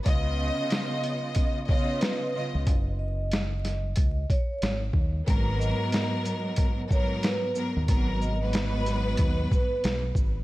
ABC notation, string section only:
X:1
M:4/4
L:1/16
Q:"Swing 16ths" 1/4=92
K:G#dor
V:1 name="String section"
[C,B,Ed]8- [C,B,Ed] z [C,B,Ed]4 [C,B,Ed]2 | z16 | [G,,F,B,A]8- [G,,F,B,A] z [G,,F,B,A]4 [G,,F,B,A]2 | [G,,F,B,A]3 [G,,F,B,B]12 z |]